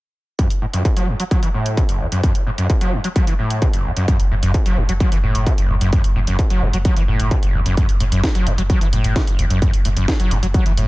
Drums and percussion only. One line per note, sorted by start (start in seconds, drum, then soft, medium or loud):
0.39 kick loud
0.39 closed hi-hat medium
0.50 closed hi-hat medium
0.73 closed hi-hat medium
0.85 kick loud
0.85 closed hi-hat medium
0.97 closed hi-hat medium
1.20 closed hi-hat medium
1.31 kick loud
1.31 closed hi-hat medium
1.43 closed hi-hat medium
1.66 closed hi-hat medium
1.77 kick loud
1.77 closed hi-hat medium
1.89 closed hi-hat medium
2.12 closed hi-hat medium
2.23 kick loud
2.23 closed hi-hat medium
2.35 closed hi-hat medium
2.58 closed hi-hat medium
2.70 kick loud
2.70 closed hi-hat medium
2.81 closed hi-hat medium
3.04 closed hi-hat medium
3.16 kick loud
3.16 closed hi-hat medium
3.27 closed hi-hat medium
3.50 closed hi-hat medium
3.62 kick loud
3.62 closed hi-hat medium
3.73 closed hi-hat medium
3.97 closed hi-hat medium
4.08 kick loud
4.08 closed hi-hat medium
4.20 closed hi-hat medium
4.43 closed hi-hat medium
4.54 kick loud
4.54 closed hi-hat medium
4.66 closed hi-hat medium
4.89 closed hi-hat medium
5.00 kick loud
5.00 closed hi-hat medium
5.12 closed hi-hat medium
5.35 closed hi-hat medium
5.47 kick loud
5.47 closed hi-hat medium
5.58 closed hi-hat medium
5.81 closed hi-hat medium
5.93 kick loud
5.93 closed hi-hat medium
6.04 closed hi-hat medium
6.27 closed hi-hat medium
6.39 kick loud
6.39 closed hi-hat medium
6.50 closed hi-hat medium
6.73 closed hi-hat medium
6.85 kick loud
6.85 closed hi-hat medium
6.97 closed hi-hat medium
7.20 closed hi-hat medium
7.31 kick loud
7.31 closed hi-hat medium
7.43 closed hi-hat medium
7.66 closed hi-hat medium
7.77 kick loud
7.77 closed hi-hat medium
7.89 closed hi-hat medium
8.00 open hi-hat loud
8.12 closed hi-hat medium
8.24 kick loud
8.24 snare loud
8.24 closed hi-hat medium
8.35 closed hi-hat medium
8.47 open hi-hat loud
8.58 closed hi-hat medium
8.70 kick loud
8.70 closed hi-hat medium
8.81 closed hi-hat medium
8.93 open hi-hat loud
9.04 closed hi-hat medium
9.16 kick loud
9.16 snare loud
9.16 closed hi-hat medium
9.27 closed hi-hat medium
9.39 open hi-hat loud
9.50 closed hi-hat medium
9.62 kick loud
9.62 closed hi-hat medium
9.74 closed hi-hat medium
9.85 open hi-hat loud
9.97 closed hi-hat medium
10.08 kick loud
10.08 snare loud
10.08 closed hi-hat medium
10.20 closed hi-hat medium
10.31 open hi-hat loud
10.43 closed hi-hat medium
10.54 kick loud
10.54 closed hi-hat medium
10.66 closed hi-hat medium
10.77 open hi-hat loud